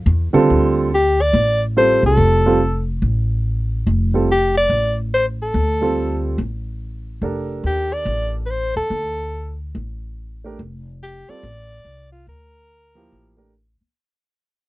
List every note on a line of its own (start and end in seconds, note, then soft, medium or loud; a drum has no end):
0.06 0.32 E2 medium
0.33 0.88 D3 medium
0.33 0.88 G3 medium
0.33 0.88 C4 medium
0.33 0.88 F4 medium
0.33 0.88 A4 loud
0.33 muted upright bass stroke soft
0.50 1.30 D2 medium
0.94 1.23 G4 medium
1.21 1.62 D5 loud
1.33 1.99 A1 medium
1.77 2.40 G3 medium
1.77 2.40 C4 medium
1.77 2.40 F4 medium
1.77 2.40 A4 medium
1.77 2.02 C5 medium
2.03 2.17 C2 medium
2.03 2.85 A4 medium
2.17 2.98 F1 medium
2.46 2.59 G3 medium
2.46 2.59 C4 medium
2.46 2.59 F4 medium
2.46 2.60 A4 medium
3.02 3.82 A1 medium
3.87 4.67 F1 medium
4.14 4.27 G3 medium
4.14 4.27 C4 medium
4.14 4.28 F4 medium
4.14 4.28 A4 medium
4.31 4.55 G4 medium
4.57 4.96 D5 loud
4.70 5.50 A1 medium
5.14 5.26 C5 loud
5.42 6.21 A4 medium
5.54 6.35 D2 medium
5.81 6.35 G3 medium
5.81 6.36 C4 medium
5.81 6.36 F4 medium
5.81 6.36 A4 medium
6.38 7.19 A1 medium
7.22 7.61 F1 medium
7.22 8.40 D4 medium
7.22 8.41 G4 medium
7.22 8.40 A4 medium
7.22 8.41 A#4 medium
7.64 8.03 D#2 medium
7.64 7.94 G4 medium
7.93 8.35 D5 loud
8.05 8.72 A1 medium
8.46 8.52 B4 medium
8.50 8.76 C5 loud
8.76 8.90 D#2 medium
8.76 9.57 A4 medium
8.90 9.71 D2 medium
9.75 10.55 A1 medium
10.44 10.58 A3 medium
10.44 10.58 D4 medium
10.44 10.58 G4 medium
10.44 10.58 A#4 medium
10.59 11.25 F1 medium
11.03 11.31 G4 medium
11.28 11.42 G3 medium
11.28 11.42 C4 medium
11.28 11.42 F4 medium
11.28 11.43 A4 medium
11.28 12.11 D5 loud
11.28 muted upright bass stroke soft
11.43 11.82 A1 medium
11.85 12.24 C2 medium
12.12 12.26 F4 medium
12.27 13.07 D2 medium
12.27 13.50 A#4 medium
12.95 13.35 F3 medium
12.95 13.36 A#3 medium
12.95 13.36 E4 medium
12.95 13.36 G4 medium
13.12 13.77 A1 medium
13.37 13.51 A3 medium
13.37 13.51 D4 medium
13.37 13.51 G4 medium
13.37 13.52 A#4 medium
13.81 muted upright bass stroke soft